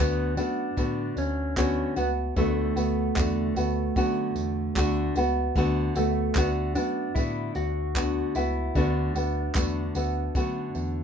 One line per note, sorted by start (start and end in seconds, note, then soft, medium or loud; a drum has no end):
0.00 0.38 D2 medium
0.00 0.37 D3 medium
0.00 0.38 A3 medium
0.00 0.37 B3 loud
0.00 0.37 B3 medium
0.00 0.36 F#4 medium
0.37 0.70 F#2 medium
0.37 0.76 A3 soft
0.37 0.77 B3 soft
0.37 1.18 D4 loud
0.37 0.77 F#4 soft
0.37 tambourine soft
0.37 tambourine medium
0.77 1.10 A2 medium
0.77 1.56 D3 medium
0.77 1.56 A3 medium
0.77 1.57 B3 medium
0.77 1.57 F#4 medium
0.77 kick loud
0.77 tambourine soft
1.16 1.82 D2 medium
1.16 1.57 C#4 medium
1.16 tambourine medium
1.16 tambourine soft
1.56 1.96 D3 medium
1.56 1.97 A3 medium
1.56 1.96 B3 medium
1.56 1.97 C#4 loud
1.56 1.95 F#4 medium
1.56 kick loud
1.56 clap loud
1.56 tambourine medium
1.96 2.30 C#2 medium
1.96 2.35 A3 soft
1.96 2.36 B3 medium
1.96 2.08 B3 medium
1.96 2.36 F#4 medium
1.96 tambourine soft
1.96 tambourine medium
2.36 2.69 D2 loud
2.36 2.76 D3 medium
2.36 2.76 A3 medium
2.36 5.13 A3 medium
2.36 2.76 B3 medium
2.36 2.75 F#4 medium
2.36 kick loud
2.36 tambourine soft
2.75 3.09 D2 medium
2.75 3.15 A3 soft
2.75 3.16 B3 medium
2.75 3.16 F#4 soft
2.75 tambourine medium
2.75 tambourine soft
3.16 3.49 E2 medium
3.16 3.56 D3 medium
3.16 3.56 A3 medium
3.16 3.56 B3 medium
3.16 3.55 F#4 medium
3.16 kick loud
3.16 clap loud
3.16 tambourine medium
3.55 3.88 D2 loud
3.55 3.95 A3 medium
3.55 3.96 B3 medium
3.55 3.96 F#4 medium
3.55 tambourine medium
3.55 tambourine soft
3.96 4.29 F#2 medium
3.96 4.75 D3 medium
3.96 4.76 A3 medium
3.96 4.76 B3 medium
3.96 4.77 F#4 medium
3.96 kick loud
3.96 tambourine soft
4.36 4.69 E2 medium
4.36 tambourine medium
4.36 tambourine soft
4.76 5.09 D2 medium
4.76 5.16 D3 loud
4.76 5.16 A3 medium
4.76 5.16 B3 medium
4.76 5.16 F#4 loud
4.76 kick loud
4.76 clap loud
4.76 tambourine medium
5.15 5.48 C#2 loud
5.15 5.56 A3 medium
5.15 5.56 B3 medium
5.15 5.56 F#4 medium
5.15 tambourine soft
5.15 tambourine medium
5.55 5.88 D2 loud
5.55 5.96 D3 medium
5.55 5.96 A3 loud
5.55 5.96 B3 medium
5.55 5.95 F#4 medium
5.55 kick loud
5.55 tambourine soft
5.95 6.28 D2 medium
5.95 6.37 A3 medium
5.95 6.35 A3 soft
5.95 6.36 B3 medium
5.95 6.36 F#4 medium
5.95 tambourine medium
5.95 tambourine soft
6.35 6.76 D2 medium
6.35 6.76 D3 medium
6.35 6.76 A3 medium
6.35 6.47 B3 loud
6.35 6.76 B3 medium
6.35 6.74 F#4 medium
6.35 kick loud
6.35 clap loud
6.35 tambourine medium
6.75 7.08 F#2 medium
6.75 7.15 A3 soft
6.75 7.16 B3 medium
6.75 7.17 D4 loud
6.75 7.16 F#4 medium
6.75 tambourine medium
6.75 tambourine soft
7.15 7.48 A2 medium
7.15 7.95 D3 medium
7.15 7.96 A3 medium
7.15 7.96 B3 medium
7.15 7.52 E4 loud
7.15 7.97 F#4 medium
7.15 kick loud
7.15 tambourine medium
7.55 8.21 D2 medium
7.55 8.31 F#4 loud
7.55 tambourine medium
7.95 8.36 D3 medium
7.95 8.36 A3 medium
7.95 8.36 B3 medium
7.95 8.35 F#4 medium
7.95 kick loud
7.95 clap loud
7.95 tambourine medium
8.35 8.68 C#2 medium
8.35 8.75 A3 medium
8.35 8.76 B3 medium
8.35 8.77 E4 medium
8.35 8.76 F#4 medium
8.35 tambourine soft
8.35 tambourine medium
8.75 9.08 D2 loud
8.75 9.15 D3 medium
8.75 9.16 A3 medium
8.75 9.16 B3 medium
8.75 11.04 D4 loud
8.75 9.14 F#4 medium
8.75 kick loud
8.75 tambourine soft
9.15 9.48 D2 medium
9.15 9.55 A3 soft
9.15 9.55 B3 medium
9.15 9.55 F#4 medium
9.15 tambourine medium
9.15 tambourine soft
9.55 9.88 E2 medium
9.55 9.95 D3 medium
9.55 9.95 A3 medium
9.55 9.95 B3 medium
9.55 9.94 F#4 medium
9.55 kick loud
9.55 clap loud
9.55 tambourine medium
9.95 10.28 D2 medium
9.95 10.35 A3 soft
9.95 10.35 B3 medium
9.95 10.35 F#4 medium
9.95 tambourine medium
10.35 10.68 F#2 medium
10.35 11.04 D3 medium
10.35 11.04 A3 medium
10.35 11.04 B3 medium
10.35 11.04 F#4 medium
10.35 kick loud
10.35 tambourine soft
10.75 11.04 E2 loud
10.75 tambourine soft